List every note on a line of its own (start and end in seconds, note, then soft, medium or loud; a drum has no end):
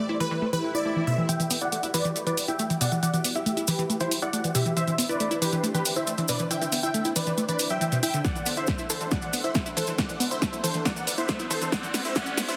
0.00 1.26 A3 medium
0.00 1.26 E4 medium
0.00 1.26 G4 medium
0.00 1.26 B4 medium
0.00 1.26 C5 medium
0.00 0.16 D5 medium
0.09 0.17 E4 loud
0.20 0.25 E3 loud
0.20 0.49 B4 loud
0.31 0.36 E3 loud
0.42 0.46 A3 medium
0.42 swell medium
0.53 0.57 E3 medium
0.53 0.72 B4 medium
0.75 0.82 E4 medium
0.75 1.03 D5 loud
0.85 0.93 A3 medium
0.96 1.01 E3 medium
1.07 1.15 B2 loud
1.07 1.26 E5 medium
1.18 1.26 E3 medium
1.29 1.36 E3 medium
1.29 8.20 E4 medium
1.29 4.73 F#4 medium
1.29 4.73 G4 medium
1.29 1.57 E5 medium
1.29 1.58 G5 loud
1.29 closed hi-hat medium
1.29 cabasa soft
1.40 1.47 E1 medium
1.40 1.44 E3 medium
1.40 closed hi-hat medium
1.40 cabasa soft
1.50 1.58 E1 loud
1.50 1.58 B3 loud
1.50 open hi-hat loud
1.50 cabasa medium
1.61 1.68 E2 medium
1.61 1.69 E4 medium
1.61 1.90 D5 medium
1.61 1.90 F#5 loud
1.61 closed hi-hat medium
1.61 cabasa soft
1.72 1.80 A3 medium
1.72 closed hi-hat medium
1.72 cabasa soft
1.83 1.90 E1 medium
1.83 1.91 E4 loud
1.83 closed hi-hat medium
1.83 cabasa soft
1.94 2.01 E1 loud
1.94 1.99 E3 loud
1.94 2.23 B4 medium
1.94 2.23 D5 loud
1.94 open hi-hat loud
1.94 cabasa loud
2.05 2.12 E1 medium
2.05 2.09 E3 loud
2.05 closed hi-hat medium
2.05 cabasa soft
2.16 2.20 A3 medium
2.16 closed hi-hat medium
2.16 cabasa medium
2.27 2.34 E1 medium
2.27 2.31 E3 medium
2.27 2.46 B4 medium
2.27 2.46 D5 medium
2.27 closed hi-hat medium
2.27 cabasa soft
2.37 2.45 E1 loud
2.37 open hi-hat loud
2.37 cabasa loud
2.48 2.55 E2 medium
2.48 2.56 E4 medium
2.48 2.77 E5 medium
2.48 2.77 G5 medium
2.48 closed hi-hat medium
2.48 cabasa soft
2.59 2.67 A3 medium
2.59 closed hi-hat medium
2.59 cabasa soft
2.70 2.77 E1 medium
2.70 2.75 E3 medium
2.70 closed hi-hat medium
2.70 cabasa soft
2.81 2.88 E1 loud
2.81 2.89 B2 loud
2.81 3.00 D5 medium
2.81 3.00 F#5 medium
2.81 open hi-hat loud
2.81 cabasa medium
2.92 2.99 E1 medium
2.92 2.99 E3 medium
2.92 closed hi-hat medium
2.92 cabasa soft
3.03 3.10 E3 medium
3.03 3.31 D5 medium
3.03 3.31 F#5 loud
3.03 closed hi-hat medium
3.03 cabasa medium
3.14 3.21 E1 medium
3.14 3.18 E3 medium
3.14 closed hi-hat medium
3.14 cabasa soft
3.24 3.32 E1 loud
3.24 3.32 B3 loud
3.24 open hi-hat loud
3.24 cabasa loud
3.35 3.42 E2 medium
3.35 3.43 E4 medium
3.35 3.64 G4 medium
3.35 3.64 E5 loud
3.35 closed hi-hat medium
3.35 cabasa soft
3.46 3.54 A3 medium
3.46 closed hi-hat medium
3.46 cabasa medium
3.57 3.64 E1 medium
3.57 3.65 E4 loud
3.57 closed hi-hat medium
3.57 cabasa soft
3.67 3.75 E1 loud
3.67 3.73 E3 loud
3.67 3.97 G4 medium
3.67 3.97 B4 loud
3.67 open hi-hat loud
3.67 cabasa loud
3.79 3.86 E1 medium
3.79 3.83 E3 loud
3.79 closed hi-hat medium
3.79 cabasa soft
3.90 3.94 A3 medium
3.90 closed hi-hat medium
3.90 cabasa soft
4.00 4.08 E1 medium
4.00 4.05 E3 medium
4.00 4.20 E4 medium
4.00 4.20 C5 medium
4.00 closed hi-hat medium
4.00 cabasa soft
4.11 4.19 E1 loud
4.11 open hi-hat loud
4.11 cabasa medium
4.22 4.29 E2 medium
4.22 4.30 E4 medium
4.22 4.51 D5 medium
4.22 4.51 F#5 loud
4.22 closed hi-hat medium
4.22 cabasa soft
4.33 4.41 A3 medium
4.33 closed hi-hat medium
4.33 cabasa medium
4.44 4.51 E1 medium
4.44 4.49 E3 medium
4.44 closed hi-hat medium
4.44 cabasa soft
4.55 4.62 E1 loud
4.55 4.62 B2 loud
4.55 4.74 G4 medium
4.55 4.74 E5 medium
4.55 open hi-hat loud
4.55 cabasa loud
4.66 4.73 E1 medium
4.66 4.73 E3 medium
4.66 closed hi-hat soft
4.66 cabasa soft
4.77 4.84 E3 medium
4.77 8.21 D4 medium
4.77 12.56 C5 medium
4.77 5.05 C5 medium
4.77 5.05 E5 loud
4.77 closed hi-hat medium
4.77 cabasa medium
4.88 4.95 C2 medium
4.88 4.92 E3 medium
4.88 closed hi-hat medium
4.88 cabasa soft
4.98 5.05 C2 loud
4.98 5.06 B3 loud
4.98 open hi-hat loud
4.98 cabasa medium
5.09 5.16 G1 medium
5.09 5.17 E4 medium
5.09 5.38 B4 medium
5.09 5.38 D5 loud
5.09 closed hi-hat soft
5.09 cabasa soft
5.20 5.28 A3 medium
5.20 closed hi-hat medium
5.20 cabasa soft
5.31 5.38 C2 medium
5.31 5.38 E4 loud
5.31 closed hi-hat medium
5.31 cabasa soft
5.42 5.49 C2 loud
5.42 5.46 E3 loud
5.42 5.71 G4 medium
5.42 5.71 B4 loud
5.42 open hi-hat loud
5.42 cabasa medium
5.52 5.60 C2 medium
5.52 5.57 E3 loud
5.52 closed hi-hat medium
5.52 cabasa soft
5.63 5.68 A3 medium
5.63 closed hi-hat medium
5.63 cabasa soft
5.74 5.82 C2 medium
5.74 5.79 E3 medium
5.74 5.94 G4 medium
5.74 5.94 B4 medium
5.74 closed hi-hat medium
5.74 cabasa soft
5.85 5.92 C2 loud
5.85 open hi-hat loud
5.85 cabasa medium
5.96 6.03 G1 medium
5.96 6.04 E4 medium
5.96 6.25 C5 medium
5.96 6.25 E5 loud
5.96 closed hi-hat medium
5.96 cabasa soft
6.07 6.15 A3 medium
6.07 closed hi-hat medium
6.07 cabasa medium
6.18 6.25 C2 medium
6.18 6.23 E3 medium
6.18 closed hi-hat medium
6.18 cabasa soft
6.28 6.36 C2 loud
6.28 6.36 B2 loud
6.28 6.48 B4 medium
6.28 6.48 D5 medium
6.28 open hi-hat loud
6.28 cabasa medium
6.39 6.47 C2 medium
6.39 6.47 E3 medium
6.39 closed hi-hat soft
6.39 cabasa soft
6.51 6.58 E3 medium
6.51 6.79 E5 medium
6.51 6.79 G5 loud
6.51 closed hi-hat medium
6.51 cabasa medium
6.62 6.68 C2 medium
6.62 6.66 E3 medium
6.62 closed hi-hat soft
6.62 cabasa soft
6.72 6.79 C2 loud
6.72 6.80 B3 loud
6.72 open hi-hat loud
6.72 cabasa medium
6.83 6.90 G1 medium
6.83 6.91 E4 medium
6.83 7.12 E5 medium
6.83 7.12 G5 loud
6.83 closed hi-hat soft
6.83 cabasa soft
6.94 7.02 A3 medium
6.94 closed hi-hat medium
6.94 cabasa medium
7.05 7.12 C2 medium
7.05 7.13 E4 loud
7.05 closed hi-hat medium
7.05 cabasa soft
7.16 7.23 C2 loud
7.16 7.20 E3 loud
7.16 7.45 B4 medium
7.16 7.45 D5 medium
7.16 open hi-hat loud
7.16 cabasa loud
7.27 7.34 C2 medium
7.27 7.31 E3 loud
7.27 closed hi-hat medium
7.27 cabasa soft
7.38 7.42 A3 medium
7.38 closed hi-hat medium
7.38 cabasa soft
7.49 7.55 C2 medium
7.49 7.53 E3 medium
7.49 7.68 B4 medium
7.49 7.68 D5 medium
7.49 closed hi-hat medium
7.49 cabasa soft
7.59 7.66 C2 loud
7.59 open hi-hat loud
7.59 cabasa loud
7.70 7.77 G1 medium
7.70 7.78 F#3 medium
7.70 7.99 E5 medium
7.70 7.99 G5 medium
7.70 closed hi-hat medium
7.70 cabasa soft
7.81 7.89 E3 medium
7.81 closed hi-hat medium
7.81 cabasa medium
7.92 7.99 C2 medium
7.92 7.99 B2 loud
7.92 closed hi-hat soft
7.92 cabasa soft
8.03 8.10 C2 loud
8.03 8.10 E4 loud
8.03 8.22 E5 medium
8.03 8.22 G5 medium
8.03 open hi-hat loud
8.03 cabasa medium
8.14 8.21 C2 loud
8.14 8.21 D3 loud
8.14 closed hi-hat soft
8.14 cabasa soft
8.24 11.69 D4 medium
8.24 11.69 A4 medium
8.24 8.53 D5 medium
8.24 11.69 E5 medium
8.24 11.69 F#5 medium
8.24 8.53 F#5 medium
8.24 kick loud
8.24 snare soft
8.24 closed hi-hat medium
8.24 riser medium
8.24 cabasa soft
8.35 8.42 D2 medium
8.35 8.40 E3 medium
8.35 closed hi-hat soft
8.35 cabasa soft
8.46 8.53 D2 loud
8.46 8.54 B3 loud
8.46 open hi-hat loud
8.46 cabasa loud
8.57 8.64 D1 medium
8.57 8.65 E4 medium
8.57 8.86 C5 medium
8.57 8.86 E5 medium
8.57 closed hi-hat soft
8.57 cabasa soft
8.67 8.75 A3 medium
8.67 kick loud
8.67 snare medium
8.67 closed hi-hat medium
8.67 cabasa medium
8.78 8.86 D2 medium
8.78 8.86 E4 medium
8.78 closed hi-hat medium
8.78 cabasa soft
8.90 8.97 D2 loud
8.90 8.94 E3 medium
8.90 9.10 A4 medium
8.90 9.10 C5 medium
8.90 open hi-hat loud
8.90 cabasa loud
9.01 9.08 D2 medium
9.01 9.05 E3 medium
9.01 closed hi-hat soft
9.01 cabasa soft
9.11 9.19 E3 medium
9.11 9.40 D5 medium
9.11 9.40 F#5 medium
9.11 kick loud
9.11 snare medium
9.11 closed hi-hat medium
9.11 cabasa medium
9.22 9.29 D2 medium
9.22 9.27 E3 medium
9.22 closed hi-hat medium
9.22 cabasa soft
9.33 9.40 D2 loud
9.33 9.41 B3 medium
9.33 open hi-hat loud
9.33 cabasa loud
9.44 9.51 D1 medium
9.44 9.52 E4 medium
9.44 9.73 C5 medium
9.44 9.73 E5 medium
9.44 closed hi-hat soft
9.44 cabasa soft
9.55 9.62 A3 medium
9.55 kick loud
9.55 snare medium
9.55 closed hi-hat medium
9.55 cabasa soft
9.66 9.73 D2 medium
9.66 9.73 E4 loud
9.66 closed hi-hat medium
9.66 cabasa soft
9.77 9.84 D2 loud
9.77 9.81 E3 loud
9.77 9.97 A4 medium
9.77 9.97 C5 medium
9.77 open hi-hat loud
9.77 cabasa medium
9.87 9.95 D2 loud
9.87 9.92 E3 loud
9.87 closed hi-hat soft
9.87 cabasa soft
9.98 10.06 E3 medium
9.98 10.27 D5 medium
9.98 10.27 F#5 loud
9.98 kick loud
9.98 snare medium
9.98 closed hi-hat medium
9.98 cabasa soft
10.09 10.16 D2 medium
10.09 10.14 E3 medium
10.09 closed hi-hat medium
10.09 cabasa soft
10.20 10.27 D2 loud
10.20 10.28 B3 loud
10.20 open hi-hat loud
10.20 cabasa medium
10.31 10.38 D1 medium
10.31 10.38 E4 medium
10.31 10.60 C5 medium
10.31 10.60 E5 medium
10.31 closed hi-hat medium
10.31 cabasa soft
10.42 10.49 A3 medium
10.42 kick loud
10.42 snare medium
10.42 closed hi-hat medium
10.42 cabasa medium
10.53 10.60 D2 medium
10.53 10.60 E4 loud
10.53 closed hi-hat medium
10.53 cabasa soft
10.64 10.71 D2 loud
10.64 10.68 E3 loud
10.64 10.84 A4 medium
10.64 10.84 C5 loud
10.64 open hi-hat loud
10.64 cabasa medium
10.74 10.82 D2 medium
10.74 10.79 E3 loud
10.74 closed hi-hat medium
10.74 cabasa soft
10.85 10.93 E3 medium
10.85 11.14 D5 medium
10.85 11.14 F#5 loud
10.85 kick loud
10.85 snare medium
10.85 closed hi-hat medium
10.85 cabasa soft
10.96 11.03 D2 medium
10.96 11.01 E3 medium
10.96 closed hi-hat medium
10.96 cabasa soft
11.07 11.14 D2 loud
11.07 11.15 B3 medium
11.07 open hi-hat loud
11.07 cabasa medium
11.18 11.25 E4 medium
11.18 11.47 C5 medium
11.18 11.47 E5 loud
11.18 closed hi-hat medium
11.18 cabasa soft
11.28 11.36 A3 medium
11.28 kick loud
11.28 snare medium
11.28 closed hi-hat medium
11.28 cabasa medium
11.39 11.47 D2 medium
11.39 11.47 E4 loud
11.39 closed hi-hat medium
11.39 cabasa soft
11.51 11.58 D2 loud
11.51 11.55 E3 loud
11.51 11.71 A4 medium
11.51 11.71 C5 medium
11.51 open hi-hat loud
11.51 cabasa medium
11.61 11.69 D2 medium
11.61 11.66 E3 loud
11.61 closed hi-hat medium
11.61 cabasa soft
11.72 11.80 E3 medium
11.72 12.56 A3 medium
11.72 12.56 E4 medium
11.72 12.56 G4 medium
11.72 12.56 B4 medium
11.72 12.01 D5 medium
11.72 12.01 F#5 loud
11.72 kick loud
11.72 snare medium
11.72 closed hi-hat medium
11.72 cabasa soft
11.83 11.90 A1 medium
11.83 11.88 E3 medium
11.83 closed hi-hat medium
11.83 cabasa soft
11.94 12.02 B3 loud
11.94 snare medium
11.94 open hi-hat loud
11.94 cabasa medium
12.05 12.12 A2 medium
12.05 12.12 E4 medium
12.05 12.14 C5 medium
12.05 12.14 E5 medium
12.05 closed hi-hat medium
12.05 cabasa soft
12.15 12.23 E3 medium
12.15 12.44 D5 medium
12.15 12.45 F#5 loud
12.15 kick loud
12.15 snare medium
12.15 closed hi-hat medium
12.15 cabasa soft
12.26 12.34 A1 medium
12.26 12.31 E3 medium
12.26 closed hi-hat medium
12.26 cabasa soft
12.37 12.45 A1 loud
12.37 12.45 B3 loud
12.37 snare medium
12.37 open hi-hat loud
12.37 cabasa medium
12.48 12.55 A1 medium
12.48 12.56 E4 medium
12.48 12.56 C5 medium
12.48 12.56 E5 medium
12.48 closed hi-hat medium
12.48 cabasa soft